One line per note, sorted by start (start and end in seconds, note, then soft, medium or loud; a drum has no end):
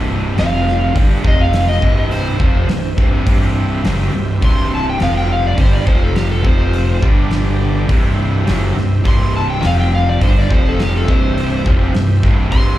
0.00 0.34 C1 medium
0.00 0.36 C2 medium
0.00 0.37 G2 medium
0.00 0.36 C3 medium
0.00 0.37 E4 medium
0.00 0.36 G4 medium
0.00 0.36 C5 medium
0.00 0.36 E5 medium
0.36 0.92 F1 medium
0.36 0.93 F2 medium
0.36 0.94 C3 medium
0.36 0.95 F3 medium
0.36 0.95 C4 medium
0.36 0.95 F4 medium
0.36 0.95 C5 medium
0.36 0.95 F5 medium
0.36 0.94 F5 medium
0.36 snare loud
0.36 open hi-hat soft
0.68 snare soft
0.94 1.23 G1 loud
0.94 1.22 G2 medium
0.94 1.23 D3 medium
0.94 1.23 G3 medium
0.94 kick loud
0.94 open hi-hat medium
1.23 1.78 F1 loud
1.23 1.80 F2 medium
1.23 1.81 C3 medium
1.23 1.81 F3 medium
1.23 1.81 C4 medium
1.23 1.82 F4 medium
1.23 1.81 C5 medium
1.23 1.82 F5 medium
1.23 kick loud
1.28 1.40 D#5 medium
1.41 1.68 F5 medium
1.53 snare loud
1.53 open hi-hat medium
1.68 2.10 D#5 loud
1.80 2.36 C1 medium
1.80 2.38 C2 medium
1.80 2.39 G2 loud
1.80 2.38 C3 medium
1.80 4.11 E4 medium
1.80 4.11 G4 medium
1.80 4.11 C5 medium
1.80 4.11 E5 medium
1.80 kick medium
2.11 3.24 C5 loud
2.11 open hi-hat soft
2.38 2.67 F1 loud
2.38 2.67 F2 medium
2.38 2.68 C3 medium
2.38 2.68 F3 loud
2.38 kick loud
2.68 2.96 C1 medium
2.68 2.92 C2 medium
2.68 2.92 G2 medium
2.68 snare medium
2.68 open hi-hat soft
2.97 3.25 C1 medium
2.97 3.24 C2 loud
2.97 3.25 G2 medium
2.97 3.25 C3 loud
2.97 kick loud
2.97 snare soft
3.25 3.81 C1 medium
3.25 3.83 C2 medium
3.25 3.83 G2 medium
3.25 3.84 C3 loud
3.25 kick loud
3.25 open hi-hat medium
3.83 4.12 F#1 loud
3.83 4.12 F#2 medium
3.83 4.12 C#3 medium
3.83 4.13 F#3 medium
3.83 snare loud
3.83 open hi-hat medium
4.12 4.40 C1 medium
4.12 4.36 C2 medium
4.12 4.36 G2 medium
4.12 5.00 E4 medium
4.12 5.00 G4 medium
4.12 5.00 C5 medium
4.12 5.00 E5 medium
4.41 4.96 C1 medium
4.41 4.98 C2 loud
4.41 4.98 G2 medium
4.41 4.98 C3 loud
4.41 kick loud
4.41 open hi-hat medium
4.45 4.72 C6 medium
4.75 4.87 A5 medium
4.89 5.02 G5 loud
4.98 5.54 F1 medium
4.98 5.55 F2 medium
4.98 5.56 C3 medium
4.98 5.57 F3 medium
4.98 5.58 C4 medium
4.98 5.58 F4 medium
4.98 5.58 C5 medium
4.98 5.58 F5 medium
4.98 snare medium
4.98 open hi-hat soft
5.03 5.16 F5 medium
5.17 5.30 G5 medium
5.32 5.45 F5 medium
5.47 5.60 D5 medium
5.56 5.85 G1 medium
5.56 5.85 G2 medium
5.56 5.85 D3 loud
5.56 5.86 G3 loud
5.56 kick loud
5.56 open hi-hat medium
5.60 5.73 C5 loud
5.73 5.87 D5 loud
5.85 6.41 F1 medium
5.85 6.41 F2 medium
5.85 6.42 C3 medium
5.85 6.43 F3 loud
5.85 7.01 C4 medium
5.85 7.01 F4 medium
5.85 7.01 C5 medium
5.85 6.02 C5 medium
5.85 7.01 F5 medium
5.85 kick loud
6.03 6.16 A4 medium
6.16 6.30 G4 loud
6.16 snare loud
6.16 open hi-hat soft
6.31 6.45 A4 loud
6.42 6.99 F1 medium
6.42 7.01 F2 loud
6.42 7.01 C3 medium
6.42 7.01 F3 loud
6.42 kick medium
6.47 7.02 C5 medium
6.73 open hi-hat soft
7.01 7.86 G1 loud
7.01 7.87 G2 medium
7.01 7.88 D3 medium
7.01 7.88 G3 medium
7.01 7.89 D4 medium
7.01 7.87 G4 medium
7.01 7.89 D5 medium
7.01 7.89 G5 medium
7.01 kick loud
7.31 snare loud
7.31 open hi-hat soft
7.88 8.44 C1 medium
7.88 8.45 C2 medium
7.88 8.45 G2 loud
7.88 8.46 C3 loud
7.88 9.60 E4 medium
7.88 9.61 G4 medium
7.88 9.61 C5 medium
7.88 9.61 E5 medium
7.88 kick loud
7.88 open hi-hat soft
8.45 8.75 F#1 loud
8.45 8.74 F#2 medium
8.45 8.74 C#3 medium
8.45 8.75 F#3 medium
8.45 snare medium
8.45 open hi-hat medium
8.74 9.04 C1 medium
8.74 8.98 C2 medium
8.74 8.99 G2 medium
8.74 snare soft
9.04 9.59 C1 medium
9.04 9.61 C2 medium
9.04 9.62 G2 medium
9.04 9.61 C3 medium
9.04 kick medium
9.04 open hi-hat medium
9.08 9.35 C6 loud
9.36 9.49 A5 medium
9.50 9.63 G5 medium
9.62 10.17 F1 medium
9.62 10.19 F2 medium
9.62 10.20 C3 medium
9.62 10.20 F3 medium
9.62 10.21 C4 medium
9.62 10.20 F4 medium
9.62 10.20 C5 medium
9.62 10.20 F5 medium
9.62 9.79 F5 loud
9.62 snare loud
9.62 open hi-hat soft
9.80 9.93 G5 medium
9.95 10.07 F5 medium
10.09 10.22 D5 medium
10.19 10.48 G1 medium
10.19 10.48 G2 loud
10.19 10.49 D3 loud
10.19 10.49 G3 medium
10.19 10.36 C5 loud
10.19 kick loud
10.19 open hi-hat medium
10.39 10.51 D5 loud
10.48 11.04 F1 medium
10.48 11.06 F2 medium
10.48 11.06 C3 loud
10.48 11.07 F3 loud
10.48 11.06 C4 medium
10.48 11.07 F4 medium
10.48 11.06 C5 medium
10.48 11.07 F5 medium
10.48 kick loud
10.54 10.66 C5 medium
10.69 10.81 A4 medium
10.80 snare loud
10.80 open hi-hat medium
10.84 10.95 G4 loud
10.97 11.09 A4 medium
11.06 11.62 C1 medium
11.06 11.64 C2 medium
11.06 11.64 G2 medium
11.06 11.64 C3 loud
11.06 12.78 E4 medium
11.06 12.78 G4 medium
11.06 12.78 C5 medium
11.06 11.65 C5 loud
11.06 12.78 E5 medium
11.06 kick loud
11.38 open hi-hat soft
11.65 11.93 F1 loud
11.65 11.93 F2 medium
11.65 11.93 C3 medium
11.65 11.93 F3 loud
11.65 kick loud
11.94 12.21 C1 medium
11.94 12.17 C2 medium
11.94 12.17 G2 medium
11.94 snare medium
11.94 open hi-hat soft
12.23 12.50 C1 medium
12.23 12.50 C2 medium
12.23 12.51 G2 medium
12.23 12.51 C3 loud
12.23 kick loud
12.23 snare soft
12.51 12.78 C1 medium
12.51 12.78 C2 medium
12.51 12.78 G2 loud
12.51 12.78 C3 loud
12.51 12.78 C6 loud
12.51 kick medium
12.51 open hi-hat medium